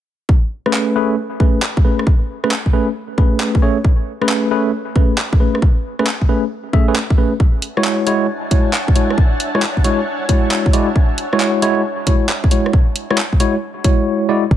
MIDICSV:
0, 0, Header, 1, 5, 480
1, 0, Start_track
1, 0, Key_signature, 3, "major"
1, 0, Tempo, 444444
1, 312, Time_signature, 4, 2, 24, 8
1, 15735, End_track
2, 0, Start_track
2, 0, Title_t, "String machine"
2, 0, Program_c, 0, 50
2, 7990, Note_on_c, 0, 76, 74
2, 7991, Note_on_c, 0, 62, 80
2, 7991, Note_on_c, 0, 73, 75
2, 7991, Note_on_c, 0, 78, 73
2, 7991, Note_on_c, 0, 80, 76
2, 7991, Note_on_c, 0, 81, 90
2, 15148, Note_off_c, 0, 76, 0
2, 15149, Note_off_c, 0, 62, 0
2, 15149, Note_off_c, 0, 73, 0
2, 15149, Note_off_c, 0, 78, 0
2, 15149, Note_off_c, 0, 80, 0
2, 15149, Note_off_c, 0, 81, 0
2, 15735, End_track
3, 0, Start_track
3, 0, Title_t, "Tine electric piano"
3, 0, Program_c, 1, 4
3, 713, Note_on_c, 1, 57, 77
3, 713, Note_on_c, 1, 61, 72
3, 713, Note_on_c, 1, 71, 82
3, 714, Note_on_c, 1, 68, 72
3, 1014, Note_off_c, 1, 57, 0
3, 1014, Note_off_c, 1, 61, 0
3, 1014, Note_off_c, 1, 68, 0
3, 1014, Note_off_c, 1, 71, 0
3, 1032, Note_on_c, 1, 57, 85
3, 1032, Note_on_c, 1, 61, 76
3, 1032, Note_on_c, 1, 71, 91
3, 1033, Note_on_c, 1, 68, 78
3, 1237, Note_off_c, 1, 57, 0
3, 1237, Note_off_c, 1, 61, 0
3, 1237, Note_off_c, 1, 71, 0
3, 1238, Note_off_c, 1, 68, 0
3, 1512, Note_on_c, 1, 57, 67
3, 1512, Note_on_c, 1, 61, 63
3, 1512, Note_on_c, 1, 68, 65
3, 1512, Note_on_c, 1, 71, 73
3, 1717, Note_off_c, 1, 61, 0
3, 1717, Note_off_c, 1, 68, 0
3, 1718, Note_off_c, 1, 57, 0
3, 1718, Note_off_c, 1, 71, 0
3, 1993, Note_on_c, 1, 57, 64
3, 1993, Note_on_c, 1, 61, 61
3, 1993, Note_on_c, 1, 68, 64
3, 1993, Note_on_c, 1, 71, 75
3, 2198, Note_off_c, 1, 57, 0
3, 2198, Note_off_c, 1, 61, 0
3, 2198, Note_off_c, 1, 68, 0
3, 2198, Note_off_c, 1, 71, 0
3, 2633, Note_on_c, 1, 57, 78
3, 2633, Note_on_c, 1, 61, 73
3, 2633, Note_on_c, 1, 68, 73
3, 2633, Note_on_c, 1, 71, 89
3, 2711, Note_off_c, 1, 57, 0
3, 2711, Note_off_c, 1, 61, 0
3, 2711, Note_off_c, 1, 68, 0
3, 2711, Note_off_c, 1, 71, 0
3, 2952, Note_on_c, 1, 57, 85
3, 2952, Note_on_c, 1, 61, 77
3, 2952, Note_on_c, 1, 68, 79
3, 2952, Note_on_c, 1, 71, 92
3, 3109, Note_off_c, 1, 57, 0
3, 3109, Note_off_c, 1, 61, 0
3, 3109, Note_off_c, 1, 68, 0
3, 3109, Note_off_c, 1, 71, 0
3, 3433, Note_on_c, 1, 57, 69
3, 3433, Note_on_c, 1, 61, 60
3, 3433, Note_on_c, 1, 68, 64
3, 3433, Note_on_c, 1, 71, 77
3, 3894, Note_off_c, 1, 57, 0
3, 3894, Note_off_c, 1, 61, 0
3, 3894, Note_off_c, 1, 68, 0
3, 3894, Note_off_c, 1, 71, 0
3, 3912, Note_on_c, 1, 57, 88
3, 3912, Note_on_c, 1, 61, 78
3, 3912, Note_on_c, 1, 68, 77
3, 3912, Note_on_c, 1, 73, 92
3, 4069, Note_off_c, 1, 57, 0
3, 4069, Note_off_c, 1, 61, 0
3, 4069, Note_off_c, 1, 68, 0
3, 4069, Note_off_c, 1, 73, 0
3, 4552, Note_on_c, 1, 57, 78
3, 4552, Note_on_c, 1, 61, 75
3, 4552, Note_on_c, 1, 68, 73
3, 4552, Note_on_c, 1, 71, 87
3, 4853, Note_off_c, 1, 57, 0
3, 4853, Note_off_c, 1, 61, 0
3, 4853, Note_off_c, 1, 68, 0
3, 4853, Note_off_c, 1, 71, 0
3, 4873, Note_on_c, 1, 57, 87
3, 4873, Note_on_c, 1, 61, 81
3, 4873, Note_on_c, 1, 68, 79
3, 4873, Note_on_c, 1, 71, 96
3, 5078, Note_off_c, 1, 57, 0
3, 5078, Note_off_c, 1, 61, 0
3, 5078, Note_off_c, 1, 68, 0
3, 5078, Note_off_c, 1, 71, 0
3, 5353, Note_on_c, 1, 57, 71
3, 5353, Note_on_c, 1, 61, 65
3, 5353, Note_on_c, 1, 68, 62
3, 5353, Note_on_c, 1, 71, 75
3, 5558, Note_off_c, 1, 57, 0
3, 5558, Note_off_c, 1, 61, 0
3, 5558, Note_off_c, 1, 68, 0
3, 5558, Note_off_c, 1, 71, 0
3, 5833, Note_on_c, 1, 57, 69
3, 5833, Note_on_c, 1, 61, 63
3, 5833, Note_on_c, 1, 68, 62
3, 5833, Note_on_c, 1, 71, 75
3, 6038, Note_off_c, 1, 57, 0
3, 6038, Note_off_c, 1, 61, 0
3, 6038, Note_off_c, 1, 68, 0
3, 6038, Note_off_c, 1, 71, 0
3, 6472, Note_on_c, 1, 57, 83
3, 6472, Note_on_c, 1, 61, 76
3, 6472, Note_on_c, 1, 68, 75
3, 6472, Note_on_c, 1, 71, 92
3, 6550, Note_off_c, 1, 57, 0
3, 6550, Note_off_c, 1, 61, 0
3, 6550, Note_off_c, 1, 68, 0
3, 6550, Note_off_c, 1, 71, 0
3, 6792, Note_on_c, 1, 57, 84
3, 6792, Note_on_c, 1, 61, 76
3, 6792, Note_on_c, 1, 68, 81
3, 6792, Note_on_c, 1, 71, 93
3, 6949, Note_off_c, 1, 57, 0
3, 6949, Note_off_c, 1, 61, 0
3, 6949, Note_off_c, 1, 68, 0
3, 6949, Note_off_c, 1, 71, 0
3, 7272, Note_on_c, 1, 57, 86
3, 7272, Note_on_c, 1, 61, 74
3, 7272, Note_on_c, 1, 76, 93
3, 7273, Note_on_c, 1, 68, 78
3, 7408, Note_off_c, 1, 57, 0
3, 7409, Note_off_c, 1, 61, 0
3, 7409, Note_off_c, 1, 68, 0
3, 7409, Note_off_c, 1, 76, 0
3, 7433, Note_on_c, 1, 57, 82
3, 7433, Note_on_c, 1, 61, 78
3, 7433, Note_on_c, 1, 68, 80
3, 7433, Note_on_c, 1, 71, 93
3, 7511, Note_off_c, 1, 57, 0
3, 7511, Note_off_c, 1, 61, 0
3, 7511, Note_off_c, 1, 68, 0
3, 7511, Note_off_c, 1, 71, 0
3, 7752, Note_on_c, 1, 61, 67
3, 7752, Note_on_c, 1, 68, 68
3, 7752, Note_on_c, 1, 71, 80
3, 7753, Note_on_c, 1, 57, 73
3, 7909, Note_off_c, 1, 57, 0
3, 7909, Note_off_c, 1, 61, 0
3, 7909, Note_off_c, 1, 68, 0
3, 7909, Note_off_c, 1, 71, 0
3, 8392, Note_on_c, 1, 56, 78
3, 8392, Note_on_c, 1, 64, 72
3, 8392, Note_on_c, 1, 66, 74
3, 8392, Note_on_c, 1, 73, 87
3, 8693, Note_off_c, 1, 56, 0
3, 8693, Note_off_c, 1, 64, 0
3, 8693, Note_off_c, 1, 66, 0
3, 8693, Note_off_c, 1, 73, 0
3, 8712, Note_on_c, 1, 56, 90
3, 8712, Note_on_c, 1, 64, 78
3, 8712, Note_on_c, 1, 66, 79
3, 8712, Note_on_c, 1, 73, 95
3, 8917, Note_off_c, 1, 73, 0
3, 8918, Note_off_c, 1, 56, 0
3, 8918, Note_off_c, 1, 64, 0
3, 8918, Note_off_c, 1, 66, 0
3, 9193, Note_on_c, 1, 56, 73
3, 9193, Note_on_c, 1, 64, 66
3, 9193, Note_on_c, 1, 66, 64
3, 9193, Note_on_c, 1, 73, 78
3, 9398, Note_off_c, 1, 56, 0
3, 9398, Note_off_c, 1, 64, 0
3, 9398, Note_off_c, 1, 66, 0
3, 9398, Note_off_c, 1, 73, 0
3, 9672, Note_on_c, 1, 56, 70
3, 9672, Note_on_c, 1, 64, 64
3, 9672, Note_on_c, 1, 66, 61
3, 9672, Note_on_c, 1, 73, 77
3, 9877, Note_off_c, 1, 64, 0
3, 9877, Note_off_c, 1, 66, 0
3, 9878, Note_off_c, 1, 56, 0
3, 9878, Note_off_c, 1, 73, 0
3, 10312, Note_on_c, 1, 56, 87
3, 10312, Note_on_c, 1, 64, 76
3, 10312, Note_on_c, 1, 66, 77
3, 10312, Note_on_c, 1, 73, 95
3, 10390, Note_off_c, 1, 56, 0
3, 10390, Note_off_c, 1, 64, 0
3, 10390, Note_off_c, 1, 66, 0
3, 10390, Note_off_c, 1, 73, 0
3, 10632, Note_on_c, 1, 56, 86
3, 10632, Note_on_c, 1, 64, 78
3, 10632, Note_on_c, 1, 66, 76
3, 10632, Note_on_c, 1, 73, 94
3, 10789, Note_off_c, 1, 56, 0
3, 10789, Note_off_c, 1, 64, 0
3, 10789, Note_off_c, 1, 66, 0
3, 10789, Note_off_c, 1, 73, 0
3, 11112, Note_on_c, 1, 56, 70
3, 11112, Note_on_c, 1, 64, 67
3, 11112, Note_on_c, 1, 66, 67
3, 11112, Note_on_c, 1, 73, 81
3, 11573, Note_off_c, 1, 56, 0
3, 11573, Note_off_c, 1, 64, 0
3, 11573, Note_off_c, 1, 66, 0
3, 11573, Note_off_c, 1, 73, 0
3, 11593, Note_on_c, 1, 56, 88
3, 11593, Note_on_c, 1, 64, 81
3, 11593, Note_on_c, 1, 66, 78
3, 11593, Note_on_c, 1, 74, 97
3, 11749, Note_off_c, 1, 56, 0
3, 11749, Note_off_c, 1, 64, 0
3, 11749, Note_off_c, 1, 66, 0
3, 11749, Note_off_c, 1, 74, 0
3, 12234, Note_on_c, 1, 56, 81
3, 12234, Note_on_c, 1, 64, 78
3, 12234, Note_on_c, 1, 66, 77
3, 12234, Note_on_c, 1, 73, 89
3, 12534, Note_off_c, 1, 56, 0
3, 12534, Note_off_c, 1, 64, 0
3, 12534, Note_off_c, 1, 66, 0
3, 12534, Note_off_c, 1, 73, 0
3, 12553, Note_on_c, 1, 56, 92
3, 12553, Note_on_c, 1, 64, 84
3, 12553, Note_on_c, 1, 66, 81
3, 12553, Note_on_c, 1, 73, 99
3, 12758, Note_off_c, 1, 56, 0
3, 12758, Note_off_c, 1, 64, 0
3, 12758, Note_off_c, 1, 66, 0
3, 12758, Note_off_c, 1, 73, 0
3, 13033, Note_on_c, 1, 56, 73
3, 13033, Note_on_c, 1, 64, 67
3, 13033, Note_on_c, 1, 66, 66
3, 13033, Note_on_c, 1, 73, 81
3, 13238, Note_off_c, 1, 56, 0
3, 13238, Note_off_c, 1, 64, 0
3, 13238, Note_off_c, 1, 66, 0
3, 13238, Note_off_c, 1, 73, 0
3, 13513, Note_on_c, 1, 64, 64
3, 13513, Note_on_c, 1, 66, 67
3, 13514, Note_on_c, 1, 56, 71
3, 13514, Note_on_c, 1, 73, 78
3, 13718, Note_off_c, 1, 56, 0
3, 13718, Note_off_c, 1, 64, 0
3, 13718, Note_off_c, 1, 66, 0
3, 13718, Note_off_c, 1, 73, 0
3, 14154, Note_on_c, 1, 56, 82
3, 14154, Note_on_c, 1, 64, 79
3, 14154, Note_on_c, 1, 66, 81
3, 14154, Note_on_c, 1, 73, 99
3, 14231, Note_off_c, 1, 56, 0
3, 14231, Note_off_c, 1, 64, 0
3, 14231, Note_off_c, 1, 66, 0
3, 14231, Note_off_c, 1, 73, 0
3, 14472, Note_on_c, 1, 66, 79
3, 14473, Note_on_c, 1, 56, 85
3, 14473, Note_on_c, 1, 64, 80
3, 14473, Note_on_c, 1, 73, 99
3, 14629, Note_off_c, 1, 56, 0
3, 14629, Note_off_c, 1, 64, 0
3, 14629, Note_off_c, 1, 66, 0
3, 14629, Note_off_c, 1, 73, 0
3, 14953, Note_on_c, 1, 56, 72
3, 14953, Note_on_c, 1, 64, 65
3, 14953, Note_on_c, 1, 66, 64
3, 14953, Note_on_c, 1, 73, 80
3, 15413, Note_off_c, 1, 64, 0
3, 15413, Note_off_c, 1, 66, 0
3, 15414, Note_off_c, 1, 56, 0
3, 15414, Note_off_c, 1, 73, 0
3, 15432, Note_on_c, 1, 56, 84
3, 15432, Note_on_c, 1, 64, 83
3, 15432, Note_on_c, 1, 66, 82
3, 15432, Note_on_c, 1, 74, 95
3, 15589, Note_off_c, 1, 56, 0
3, 15589, Note_off_c, 1, 64, 0
3, 15589, Note_off_c, 1, 66, 0
3, 15589, Note_off_c, 1, 74, 0
3, 15735, End_track
4, 0, Start_track
4, 0, Title_t, "808-style bass"
4, 0, Program_c, 2, 38
4, 15672, Note_on_c, 2, 33, 95
4, 15735, Note_off_c, 2, 33, 0
4, 15735, End_track
5, 0, Start_track
5, 0, Title_t, "Drums"
5, 312, Note_on_c, 9, 36, 104
5, 420, Note_off_c, 9, 36, 0
5, 712, Note_on_c, 9, 37, 61
5, 792, Note_on_c, 9, 39, 114
5, 820, Note_off_c, 9, 37, 0
5, 900, Note_off_c, 9, 39, 0
5, 1512, Note_on_c, 9, 36, 96
5, 1620, Note_off_c, 9, 36, 0
5, 1752, Note_on_c, 9, 39, 108
5, 1860, Note_off_c, 9, 39, 0
5, 1913, Note_on_c, 9, 36, 98
5, 2021, Note_off_c, 9, 36, 0
5, 2153, Note_on_c, 9, 37, 53
5, 2233, Note_on_c, 9, 36, 106
5, 2261, Note_off_c, 9, 37, 0
5, 2341, Note_off_c, 9, 36, 0
5, 2633, Note_on_c, 9, 37, 63
5, 2713, Note_on_c, 9, 39, 114
5, 2741, Note_off_c, 9, 37, 0
5, 2821, Note_off_c, 9, 39, 0
5, 2873, Note_on_c, 9, 36, 63
5, 2981, Note_off_c, 9, 36, 0
5, 3433, Note_on_c, 9, 36, 103
5, 3541, Note_off_c, 9, 36, 0
5, 3672, Note_on_c, 9, 39, 114
5, 3780, Note_off_c, 9, 39, 0
5, 3833, Note_on_c, 9, 36, 99
5, 3941, Note_off_c, 9, 36, 0
5, 4153, Note_on_c, 9, 36, 108
5, 4261, Note_off_c, 9, 36, 0
5, 4553, Note_on_c, 9, 37, 63
5, 4633, Note_on_c, 9, 39, 120
5, 4661, Note_off_c, 9, 37, 0
5, 4741, Note_off_c, 9, 39, 0
5, 5352, Note_on_c, 9, 36, 103
5, 5460, Note_off_c, 9, 36, 0
5, 5593, Note_on_c, 9, 39, 113
5, 5701, Note_off_c, 9, 39, 0
5, 5753, Note_on_c, 9, 36, 103
5, 5861, Note_off_c, 9, 36, 0
5, 5993, Note_on_c, 9, 37, 51
5, 6072, Note_on_c, 9, 36, 110
5, 6101, Note_off_c, 9, 37, 0
5, 6180, Note_off_c, 9, 36, 0
5, 6472, Note_on_c, 9, 37, 60
5, 6552, Note_on_c, 9, 39, 115
5, 6580, Note_off_c, 9, 37, 0
5, 6660, Note_off_c, 9, 39, 0
5, 6713, Note_on_c, 9, 36, 62
5, 6821, Note_off_c, 9, 36, 0
5, 7272, Note_on_c, 9, 36, 100
5, 7380, Note_off_c, 9, 36, 0
5, 7512, Note_on_c, 9, 39, 114
5, 7620, Note_off_c, 9, 39, 0
5, 7672, Note_on_c, 9, 36, 104
5, 7780, Note_off_c, 9, 36, 0
5, 7992, Note_on_c, 9, 36, 105
5, 8100, Note_off_c, 9, 36, 0
5, 8232, Note_on_c, 9, 46, 92
5, 8340, Note_off_c, 9, 46, 0
5, 8392, Note_on_c, 9, 37, 60
5, 8472, Note_on_c, 9, 39, 119
5, 8500, Note_off_c, 9, 37, 0
5, 8580, Note_off_c, 9, 39, 0
5, 8712, Note_on_c, 9, 46, 85
5, 8820, Note_off_c, 9, 46, 0
5, 9192, Note_on_c, 9, 36, 95
5, 9192, Note_on_c, 9, 46, 93
5, 9300, Note_off_c, 9, 36, 0
5, 9300, Note_off_c, 9, 46, 0
5, 9432, Note_on_c, 9, 39, 112
5, 9540, Note_off_c, 9, 39, 0
5, 9592, Note_on_c, 9, 36, 95
5, 9672, Note_on_c, 9, 46, 84
5, 9700, Note_off_c, 9, 36, 0
5, 9780, Note_off_c, 9, 46, 0
5, 9833, Note_on_c, 9, 37, 50
5, 9912, Note_on_c, 9, 36, 104
5, 9941, Note_off_c, 9, 37, 0
5, 10020, Note_off_c, 9, 36, 0
5, 10152, Note_on_c, 9, 46, 98
5, 10260, Note_off_c, 9, 46, 0
5, 10313, Note_on_c, 9, 37, 60
5, 10392, Note_on_c, 9, 39, 115
5, 10421, Note_off_c, 9, 37, 0
5, 10500, Note_off_c, 9, 39, 0
5, 10552, Note_on_c, 9, 36, 56
5, 10632, Note_on_c, 9, 46, 89
5, 10660, Note_off_c, 9, 36, 0
5, 10740, Note_off_c, 9, 46, 0
5, 11112, Note_on_c, 9, 36, 94
5, 11112, Note_on_c, 9, 46, 97
5, 11220, Note_off_c, 9, 36, 0
5, 11220, Note_off_c, 9, 46, 0
5, 11353, Note_on_c, 9, 39, 109
5, 11461, Note_off_c, 9, 39, 0
5, 11513, Note_on_c, 9, 36, 97
5, 11593, Note_on_c, 9, 46, 91
5, 11621, Note_off_c, 9, 36, 0
5, 11701, Note_off_c, 9, 46, 0
5, 11833, Note_on_c, 9, 36, 108
5, 11941, Note_off_c, 9, 36, 0
5, 12073, Note_on_c, 9, 46, 98
5, 12181, Note_off_c, 9, 46, 0
5, 12233, Note_on_c, 9, 37, 61
5, 12313, Note_on_c, 9, 39, 109
5, 12341, Note_off_c, 9, 37, 0
5, 12421, Note_off_c, 9, 39, 0
5, 12553, Note_on_c, 9, 46, 93
5, 12661, Note_off_c, 9, 46, 0
5, 13033, Note_on_c, 9, 36, 92
5, 13033, Note_on_c, 9, 46, 105
5, 13141, Note_off_c, 9, 36, 0
5, 13141, Note_off_c, 9, 46, 0
5, 13272, Note_on_c, 9, 39, 104
5, 13380, Note_off_c, 9, 39, 0
5, 13433, Note_on_c, 9, 36, 91
5, 13512, Note_on_c, 9, 46, 90
5, 13541, Note_off_c, 9, 36, 0
5, 13620, Note_off_c, 9, 46, 0
5, 13673, Note_on_c, 9, 37, 50
5, 13753, Note_on_c, 9, 36, 105
5, 13781, Note_off_c, 9, 37, 0
5, 13861, Note_off_c, 9, 36, 0
5, 13993, Note_on_c, 9, 46, 107
5, 14101, Note_off_c, 9, 46, 0
5, 14153, Note_on_c, 9, 37, 65
5, 14233, Note_on_c, 9, 39, 114
5, 14261, Note_off_c, 9, 37, 0
5, 14341, Note_off_c, 9, 39, 0
5, 14393, Note_on_c, 9, 36, 62
5, 14472, Note_on_c, 9, 46, 93
5, 14501, Note_off_c, 9, 36, 0
5, 14580, Note_off_c, 9, 46, 0
5, 14952, Note_on_c, 9, 36, 97
5, 14952, Note_on_c, 9, 46, 102
5, 15060, Note_off_c, 9, 36, 0
5, 15060, Note_off_c, 9, 46, 0
5, 15672, Note_on_c, 9, 36, 112
5, 15735, Note_off_c, 9, 36, 0
5, 15735, End_track
0, 0, End_of_file